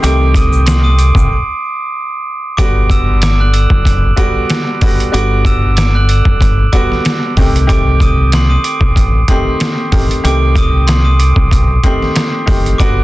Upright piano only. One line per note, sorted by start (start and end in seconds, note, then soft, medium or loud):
0.02 1.30 D#3 medium
0.02 1.31 A3 medium
0.02 1.31 C4 medium
0.02 1.31 G4 loud
2.58 4.07 D3 loud
2.58 4.07 G3 medium
2.58 4.07 B3 medium
2.58 4.08 F#4 loud
4.16 4.76 D3 loud
4.16 4.77 G3 medium
4.16 4.77 B3 medium
4.16 4.77 F#4 loud
4.82 5.10 D3 medium
4.82 5.11 G3 medium
4.82 5.11 B3 medium
4.82 5.12 F#4 medium
5.12 6.61 D3 medium
5.12 6.61 G3 medium
5.12 6.62 B3 medium
5.12 6.62 F#4 loud
6.73 7.32 D3 medium
6.73 7.33 G3 medium
6.73 7.33 B3 medium
6.73 7.33 F#4 medium
7.37 7.66 D#3 medium
7.37 7.66 A3 medium
7.37 7.67 C4 medium
7.37 7.68 G4 medium
7.67 9.16 D#3 medium
7.67 9.17 A3 medium
7.67 9.17 C4 medium
7.67 9.17 G4 loud
9.29 9.88 D#3 loud
9.29 9.88 A3 medium
9.29 9.89 C4 medium
9.29 9.89 G4 loud
9.92 10.22 D#3 medium
9.92 10.22 A3 medium
9.92 10.22 C4 medium
9.92 10.23 G4 medium
10.24 11.72 D#3 medium
10.24 11.73 A3 medium
10.24 11.73 C4 medium
10.24 11.73 G4 loud
11.84 12.43 D#3 medium
11.84 12.43 A3 medium
11.84 12.44 C4 medium
11.84 12.44 G4 medium
12.46 12.76 D#3 medium
12.46 12.77 A3 medium
12.46 12.77 C4 medium
12.46 12.77 G4 medium
12.79 13.04 D3 loud
12.79 13.04 G3 medium
12.79 13.04 B3 medium
12.79 13.04 F#4 loud